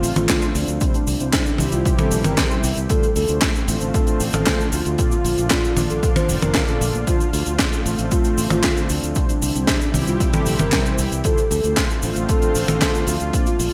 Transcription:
Already playing: D3 F3 A3 C4 D4 F4 C5
0.03 A1, open hi-hat, cabasa
0.16 A1 F4, closed hi-hat, high tom, cabasa
0.29 D3 A3 D4 F4 C5, kick, snare, clap, closed hi-hat, cabasa
0.42 cabasa
0.55 D2 D4, open hi-hat, cabasa
0.68 D2, closed hi-hat, cabasa
0.81 C3 E3 G3 C4 E4 G4 C5, kick, closed hi-hat, cabasa
0.94 D4, closed hi-hat, cabasa
1.07 C2, open hi-hat, cabasa
1.20 C2 C3 G3 C4 E4 C5, closed hi-hat, cabasa
1.33 D4, kick, snare, clap, closed hi-hat, cabasa
1.46 cabasa
1.58 C2 C3 G3 C4 E4 C5, open hi-hat, high tom, cabasa
1.72 C2 F4, closed hi-hat, cabasa
1.85 kick, closed hi-hat, cabasa
1.98 C3 G3 C4 E4 A4 C5, closed hi-hat, high tom, cabasa
2.11 A#1, open hi-hat, cabasa
2.24 G1 A#4, closed hi-hat, high tom, cabasa
2.37 C3 G3 C4 E4 C5, kick, snare, clap, closed hi-hat, cabasa
2.51 E4, cabasa
2.63 C2, open hi-hat, cabasa
2.76 C2, closed hi-hat, cabasa
2.89 D3 F3 A3 C4 D4 F4 A4 C5, kick, closed hi-hat, cabasa
3.03 closed hi-hat, cabasa
3.16 D2 A4, open hi-hat, cabasa
3.28 D2 D3 A3 D4 F4 C5, closed hi-hat, cabasa
3.42 kick, snare, clap, closed hi-hat, cabasa
3.55 cabasa
3.68 A1 D3 A3 D4 F4 C5, open hi-hat, cabasa
3.81 A1, closed hi-hat, cabasa
3.94 A4, kick, closed hi-hat, cabasa
4.07 D3 A3 D4 F4 C5, closed hi-hat, cabasa
4.20 A1, open hi-hat, cabasa
4.33 A1 A4, closed hi-hat, high tom, cabasa
4.46 D3 A3 D4 F4 C5, kick, snare, clap, closed hi-hat, cabasa
4.60 cabasa
4.72 D2 F4, open hi-hat, cabasa
4.85 D2, closed hi-hat, cabasa
4.98 A#2 A#3 D4 F4 D5, kick, closed hi-hat, cabasa
5.11 F4, closed hi-hat, cabasa
5.24 A#1, open hi-hat, cabasa
5.38 A#1 A#2 A#3 D4 F4 D5, closed hi-hat, cabasa
5.50 F4, kick, snare, clap, closed hi-hat, cabasa
5.64 cabasa
5.77 A#1 A#2 A#3 D4 F4 D5, open hi-hat, high tom, cabasa
5.90 A#1 A4, closed hi-hat, cabasa
6.03 kick, closed hi-hat, cabasa
6.16 A#2 A#3 D4 F4 C5 D5, closed hi-hat, high tom, cabasa
6.29 F1 A#2 A#3 D4 F4 G5, open hi-hat, cabasa
6.41 F1 A#2 A#3 D4 F4 A#4 D5, closed hi-hat, high tom, cabasa
6.54 kick, snare, clap, closed hi-hat, cabasa
6.68 A#2 A#3 D4 F4 A4 D5, cabasa
6.81 A#1, open hi-hat, cabasa
6.93 A#1, closed hi-hat, cabasa
7.07 D3 A3 C4 D4 F4 C5, kick, closed hi-hat, cabasa
7.20 closed hi-hat, cabasa
7.33 D2 F4, open hi-hat, cabasa
7.46 D2 D3 A3 D4 F4 C5, closed hi-hat, cabasa
7.59 kick, snare, clap, closed hi-hat, cabasa
7.73 cabasa
7.86 A1 D3 A3 D4 F4 C5, open hi-hat, cabasa
7.98 A1, closed hi-hat, cabasa
8.11 F4, kick, closed hi-hat, cabasa
8.24 D3 A3 D4 F4 C5, closed hi-hat, cabasa
8.38 A1, open hi-hat, cabasa
8.50 A1 F4, closed hi-hat, high tom, cabasa
8.63 D3 A3 D4 F4 C5, kick, snare, clap, closed hi-hat, cabasa
8.77 cabasa
8.89 D2 D4, open hi-hat, cabasa
9.03 D2, closed hi-hat, cabasa
9.15 C3 E3 G3 C4 E4 G4 C5, kick, closed hi-hat, cabasa
9.29 D4, closed hi-hat, cabasa
9.42 C2, open hi-hat, cabasa
9.55 C2 C3 G3 C4 E4 C5, closed hi-hat, cabasa
9.67 D4, kick, snare, clap, closed hi-hat, cabasa
9.81 cabasa
9.94 C2 C3 G3 C4 E4 C5, open hi-hat, high tom, cabasa
10.07 C2 F4, closed hi-hat, cabasa
10.20 kick, closed hi-hat, cabasa
10.33 C3 G3 C4 E4 A4 C5, closed hi-hat, high tom, cabasa
10.46 A#1, open hi-hat, cabasa
10.59 G1 A#4, closed hi-hat, high tom, cabasa
10.72 C3 G3 C4 E4 C5, kick, snare, clap, closed hi-hat, cabasa
10.86 E4, cabasa
10.98 C2, open hi-hat, cabasa
11.12 C2, closed hi-hat, cabasa
11.24 D3 F3 A3 C4 D4 F4 A4 C5, kick, closed hi-hat, cabasa
11.38 closed hi-hat, cabasa
11.51 D2 A4, open hi-hat, cabasa
11.64 D2 D3 A3 D4 F4 C5, closed hi-hat, cabasa
11.77 kick, snare, clap, closed hi-hat, cabasa
11.90 cabasa
12.02 A1 D3 A3 D4 F4 C5, open hi-hat, cabasa
12.16 A1, closed hi-hat, cabasa
12.29 A4, kick, closed hi-hat, cabasa
12.42 D3 A3 D4 F4 C5, closed hi-hat, cabasa
12.55 A1, open hi-hat, cabasa
12.68 A1 A4, closed hi-hat, high tom, cabasa
12.81 D3 A3 D4 F4 C5, kick, snare, clap, closed hi-hat, cabasa
12.95 cabasa
13.07 D2 F4, open hi-hat, cabasa
13.20 D2, closed hi-hat, cabasa
13.33 A#2 A#3 D4 F4 D5, kick, closed hi-hat, cabasa
13.46 F4, closed hi-hat, cabasa
13.59 A#1, open hi-hat, cabasa

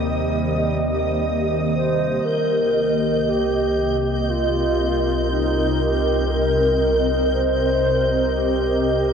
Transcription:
Already playing: D#2 C3 D#3 G3 A#3 G4 D#5 D#6
1.76 C5
2.24 C2 C3 G3 A#4 G6
3.29 G4
3.38 C4
3.59 A#4
4.30 F4
5.31 D#4
5.81 G4
6.31 A#4
7.33 C5
8.35 G4

